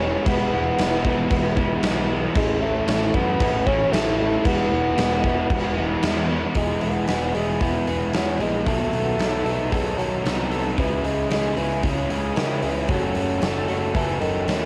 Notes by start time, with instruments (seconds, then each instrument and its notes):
Already playing: picked electric bass E1, overdriven electric guitar E3, bassoon C#4
0.00 overdriven electric guitar G#3 B3 E4
0.26 picked electric bass E1, overdriven electric guitar E3 G#3 B3 E4, bassoon B3, kick, crash
0.52 picked electric bass E1, overdriven electric guitar G#3 B3 E4
0.78 picked electric bass E1, overdriven electric guitar E3 G#3 B3 E4, snare, crash
1.04 overdriven electric guitar E3 G#3 B3 E4, kick
1.30 picked electric bass E1, overdriven electric guitar E3 G#3 B3 E4, kick, crash
1.56 overdriven electric guitar E3 G#3 B3 E4, kick
1.83 picked electric bass B1, overdriven electric guitar E3 G#3 B3 E4, snare, crash
2.09 overdriven electric guitar G#3 B3 E4
2.35 picked electric bass A1, overdriven electric guitar A2 E3 A3 C#4 E4, bassoon G#3, kick, crash
2.61 bassoon A3, overdriven electric guitar A3 C#4 E4
2.87 picked electric bass A1, overdriven electric guitar E3 A3 C#4 E4, snare, crash
3.14 picked electric bass F#2, overdriven electric guitar A2 E3 A3 C#4 E4, bassoon B3, kick
3.40 picked electric bass A1, overdriven electric guitar E3 A3 C#4 E4, kick, crash
3.66 overdriven electric guitar A2 E3 A3 C#4 E4, bassoon C#4, kick
3.92 picked electric bass A1, overdriven electric guitar E3 A3 C#4 E4, bassoon A3, snare, crash
4.18 bassoon A3, overdriven electric guitar A3 C#4 E4
4.45 picked electric bass E1, overdriven electric guitar E3 G#3 B3 E4, bassoon B3, kick, crash
4.71 picked electric bass E1, overdriven electric guitar G#3 B3 E4
4.97 picked electric bass E1, overdriven electric guitar E3 G#3 B3 E4, snare, crash
5.23 overdriven electric guitar E3 G#3 B3 E4, kick
5.49 picked electric bass E1, overdriven electric guitar E3 G#3 B3 E4, kick, crash
5.76 overdriven electric guitar E3 G#3 B3 E4
6.02 picked electric bass E2, overdriven electric guitar E3 G#3 B3 E4, snare, crash
6.29 overdriven electric guitar G#3 B3 E4
6.55 picked electric bass E1, overdriven electric guitar E3 G#3 B3 E4 G#4, bassoon G#3, kick, open hi-hat
6.81 picked electric bass E1, bassoon B3, overdriven electric guitar B3 E4 G#4, open hi-hat
7.08 picked electric bass E1, overdriven electric guitar G#3 B3 E4 G#4, bassoon B3, snare, open hi-hat
7.34 picked electric bass E1, bassoon G#3, overdriven electric guitar B3 E4 G#4, open hi-hat
7.60 picked electric bass E1, overdriven electric guitar E3 G#3 B3 E4 G#4, bassoon E3, kick, open hi-hat
7.86 picked electric bass E1, overdriven electric guitar B3 E4 G#4, open hi-hat
8.12 picked electric bass E2, bassoon F#3, overdriven electric guitar G#3 B3 E4 G#4, snare, open hi-hat
8.38 picked electric bass A#1, bassoon G#3, overdriven electric guitar B3 E4 G#4, open hi-hat
8.65 picked electric bass B1, overdriven electric guitar B2 D#3 F#3 B3 D#4 A4, bassoon A3, kick, open hi-hat
8.92 picked electric bass B1, overdriven electric guitar F#3 B3 D#4 A4, open hi-hat
9.18 picked electric bass B1, overdriven electric guitar F#3 B3 D#4 A4, snare, open hi-hat
9.44 picked electric bass B1, overdriven electric guitar F#3 B3 D#4 A4, bassoon A3, open hi-hat
9.71 picked electric bass B1, overdriven electric guitar B2 D#3 F#3 B3 D#4 A4, bassoon G#3, kick, open hi-hat
9.97 picked electric bass B1, bassoon F#3, overdriven electric guitar F#3 B3 D#4 A4, open hi-hat
10.24 picked electric bass C2, overdriven electric guitar F#3 B3 D#4 A4, snare, open hi-hat
10.50 overdriven electric guitar F#3 B3 D#4 A4, open hi-hat
10.77 picked electric bass C#2, overdriven electric guitar C#3 G#3 C#4 E4 G#4, bassoon E3, kick, open hi-hat
11.03 picked electric bass C#2, bassoon G#3, overdriven electric guitar C#4 E4 G#4, open hi-hat
11.30 picked electric bass C#2, overdriven electric guitar G#3 C#4 E4 G#4, bassoon G#3, snare, open hi-hat
11.56 picked electric bass C#2, bassoon E3, overdriven electric guitar C#4 E4 G#4, open hi-hat
11.83 picked electric bass C#2, overdriven electric guitar C#3 G#3 C#4 E4 G#4, bassoon C#3, kick, open hi-hat
12.09 picked electric bass C#2, overdriven electric guitar C#4 E4 G#4, open hi-hat
12.36 picked electric bass C#3, bassoon D#3, overdriven electric guitar G#3 C#4 E4 G#4, snare, open hi-hat
12.62 picked electric bass C#2, bassoon E3, overdriven electric guitar C#4 E4 G#4, open hi-hat
12.89 picked electric bass F#1, overdriven electric guitar F#2 C#3 F#3 A3 C#4 A4, bassoon F#3, kick, open hi-hat
13.15 picked electric bass F#1, overdriven electric guitar F#3 A3 C#4 A4, open hi-hat
13.41 picked electric bass F#1, overdriven electric guitar F#3 A3 C#4 A4, snare, open hi-hat
13.68 picked electric bass F#1, bassoon F#3, overdriven electric guitar F#3 A3 C#4 A4, open hi-hat
13.94 picked electric bass F#1, overdriven electric guitar F#2 C#3 F#3 A3 C#4 A4, bassoon E3, kick, open hi-hat
14.20 picked electric bass F#1, bassoon D#3, overdriven electric guitar F#3 A3 C#4 A4, open hi-hat
14.47 picked electric bass D#2, overdriven electric guitar F#3 A3 C#4 A4, snare, open hi-hat